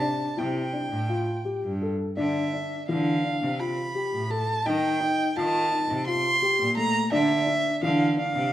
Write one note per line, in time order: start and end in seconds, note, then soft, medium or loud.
0.00 0.27 D4 medium
0.00 0.40 A5 medium
0.37 0.80 C3 loud
0.37 0.63 E4 medium
0.37 1.82 G5 medium
0.73 0.99 D4 medium
0.92 1.20 A2 medium
1.09 1.35 F4 medium
1.45 1.71 G4 medium
1.63 1.92 G2 medium
1.82 2.07 A4 medium
2.17 2.46 D3 medium
2.17 2.43 D4 medium
2.17 2.85 E5 medium
2.53 2.79 D4 medium
2.89 3.32 D3 medium
2.89 3.14 E3 medium
2.89 3.62 F5 medium
3.24 3.50 D4 medium
3.42 3.70 C3 medium
3.60 3.85 F4 medium
3.60 4.32 B5 medium
3.95 4.21 G4 medium
4.13 4.41 A2 medium
4.30 4.56 A4 medium
4.30 4.68 A5 loud
4.66 4.94 D#3 loud
4.66 4.91 D#4 medium
4.66 5.38 G5 loud
5.00 5.26 D#4 medium
5.36 5.79 D#3 loud
5.36 5.62 F4 medium
5.36 6.06 A5 loud
5.72 5.97 D#4 medium
5.90 6.18 C3 medium
6.07 6.32 F4 medium
6.07 6.73 C6 loud
6.42 6.67 G4 medium
6.59 6.87 A#2 medium
6.77 7.02 A3 medium
6.77 7.10 A#5 loud
7.11 7.40 D3 loud
7.11 7.37 D4 loud
7.11 7.79 E5 loud
7.47 7.72 D4 medium
7.82 8.24 D3 loud
7.82 8.08 E3 medium
7.82 8.16 F5 medium
8.17 8.43 D4 medium
8.17 8.53 F5 loud
8.35 8.53 C3 medium